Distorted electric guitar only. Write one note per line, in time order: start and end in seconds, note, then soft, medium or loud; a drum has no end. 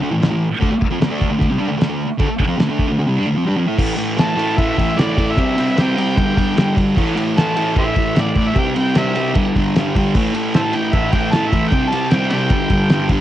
0.02 0.12 D3 medium
0.02 0.11 A3 loud
0.11 0.21 A2 medium
0.11 0.21 E3 medium
0.22 0.30 A2 medium
0.22 0.30 E3 medium
0.31 0.47 A2 medium
0.31 0.47 E3 medium
0.60 0.70 D3 medium
0.60 0.71 A3 medium
0.72 muted distorted electric guitar stroke medium
0.90 1.00 F3 medium
0.90 1.00 C4 medium
1.00 1.09 D3 medium
1.00 1.10 A3 medium
1.10 1.29 D3 medium
1.10 1.29 A3 loud
1.10 1.30 D4 loud
1.30 1.38 D3 medium
1.30 1.38 A3 medium
1.39 1.49 D3 medium
1.39 1.50 A3 medium
1.50 1.60 C3 medium
1.50 1.57 G3 loud
1.58 1.68 G3 loud
1.58 1.70 D4 loud
1.67 1.77 D3 medium
1.67 1.77 A3 medium
1.78 1.88 D3 medium
1.78 1.88 A3 medium
1.89 2.06 D3 medium
1.89 2.06 A3 medium
2.18 2.27 D3 medium
2.18 2.29 A3 medium
2.28 muted distorted electric guitar stroke medium
2.47 2.58 F3 medium
2.47 2.58 C4 medium
2.58 2.68 D3 medium
2.58 2.69 A3 medium
2.69 2.86 D3 loud
2.69 2.87 A3 medium
2.69 2.90 D4 loud
2.88 2.98 D3 medium
2.88 2.98 A3 medium
2.99 3.07 D3 medium
2.99 3.08 A3 medium
3.07 3.18 C3 medium
3.07 3.15 G3 loud
3.16 3.26 G3 medium
3.16 3.28 D4 loud
3.26 3.36 D3 medium
3.26 3.37 A3 medium
3.36 3.47 F3 loud
3.36 3.46 C4 loud
3.46 3.57 G3 medium
3.46 3.58 D4 medium
3.56 3.67 F3 medium
3.56 3.67 C4 loud
3.67 3.77 A3 medium
3.67 3.78 E4 loud
3.77 3.95 A2 medium
3.77 3.96 E3 medium
3.77 3.96 A3 medium
3.96 4.16 A2 medium
3.96 4.16 E3 medium
3.96 4.17 A3 medium
4.17 4.35 A2 medium
4.17 4.36 E3 medium
4.17 4.36 A3 medium
4.36 4.56 A2 medium
4.36 4.57 E3 medium
4.36 4.57 A3 medium
4.57 4.76 A2 medium
4.57 4.77 E3 loud
4.57 4.78 A3 loud
4.77 4.96 A2 medium
4.77 4.96 E3 loud
4.77 4.98 A3 loud
4.97 5.17 A2 medium
4.97 5.17 E3 loud
4.97 5.19 A3 loud
5.18 5.37 A2 loud
5.18 5.37 E3 medium
5.18 5.37 A3 medium
5.37 5.56 C3 medium
5.37 5.57 G3 medium
5.37 5.58 C4 medium
5.57 5.76 C3 medium
5.57 5.76 G3 loud
5.57 5.77 C4 loud
5.77 5.96 C3 medium
5.77 5.97 G3 medium
5.77 5.98 C4 loud
5.97 6.16 C3 medium
5.97 6.16 G3 loud
5.97 6.17 C4 medium
6.17 6.35 G2 medium
6.17 6.37 D3 loud
6.17 6.37 G3 loud
6.36 6.56 G2 medium
6.36 6.56 D3 loud
6.36 6.58 G3 loud
6.57 6.75 G2 medium
6.57 6.77 D3 loud
6.57 6.77 G3 loud
6.76 6.95 G2 medium
6.76 6.96 D3 medium
6.76 6.96 G3 loud
6.97 7.15 A2 medium
6.97 7.16 E3 medium
6.97 7.17 A3 medium
7.16 7.36 A2 medium
7.16 7.37 E3 loud
7.16 7.38 A3 loud
7.37 7.55 A2 loud
7.37 7.56 E3 loud
7.37 7.57 A3 loud
7.56 7.75 A2 medium
7.56 7.77 E3 medium
7.56 7.77 A3 loud
7.76 7.95 A2 loud
7.76 7.96 E3 loud
7.76 7.97 A3 loud
7.96 8.14 A2 medium
7.96 8.15 E3 loud
7.96 8.16 A3 loud
8.16 8.35 A2 medium
8.16 8.35 E3 medium
8.16 8.36 A3 loud
8.36 8.54 A2 medium
8.36 8.54 E3 medium
8.36 8.55 A3 loud
8.54 8.74 C3 medium
8.54 8.75 G3 medium
8.54 8.76 C4 medium
8.75 8.94 C3 medium
8.75 8.95 G3 loud
8.75 8.95 C4 loud
8.95 9.14 C3 medium
8.95 9.15 G3 loud
8.95 9.16 C4 loud
9.15 9.33 C3 medium
9.15 9.34 G3 medium
9.15 9.35 C4 medium
9.34 9.55 G2 loud
9.34 9.56 D3 loud
9.34 9.57 G3 loud
9.56 9.74 G2 loud
9.56 9.76 D3 medium
9.56 9.77 G3 loud
9.76 9.94 G2 medium
9.76 9.95 D3 medium
9.76 9.96 G3 medium
9.96 10.13 G2 medium
9.96 10.14 D3 medium
9.96 10.14 G3 loud
10.15 10.32 A2 medium
10.15 10.34 E3 medium
10.15 10.34 A3 medium
10.33 10.53 A2 medium
10.33 10.54 E3 medium
10.33 10.55 A3 loud
10.54 10.73 A2 medium
10.54 10.73 E3 loud
10.54 10.75 A3 loud
10.74 10.92 A2 medium
10.74 10.93 E3 loud
10.74 10.94 A3 medium
10.93 11.13 A2 medium
10.93 11.14 E3 loud
10.93 11.14 A3 loud
11.14 11.33 A2 medium
11.14 11.34 E3 loud
11.14 11.35 A3 loud
11.34 11.52 A2 medium
11.34 11.53 E3 medium
11.34 11.53 A3 loud
11.53 11.71 A2 medium
11.53 11.72 E3 medium
11.53 11.72 A3 medium
11.72 11.91 C3 medium
11.72 11.92 G3 medium
11.72 11.93 C4 medium
11.93 12.11 C3 medium
11.93 12.12 G3 medium
11.93 12.12 C4 loud
12.12 12.30 C3 medium
12.12 12.31 G3 medium
12.12 12.32 C4 loud
12.31 12.50 C3 medium
12.31 12.51 G3 medium
12.31 12.51 C4 medium
12.51 12.70 G2 loud
12.51 12.71 D3 loud
12.51 12.72 G3 loud
12.72 12.90 G2 loud
12.72 12.91 D3 loud
12.72 12.92 G3 medium
12.91 13.09 G2 medium
12.91 13.11 D3 loud
12.91 13.11 G3 loud
13.10 13.21 G2 medium
13.10 13.21 D3 medium
13.10 13.21 G3 loud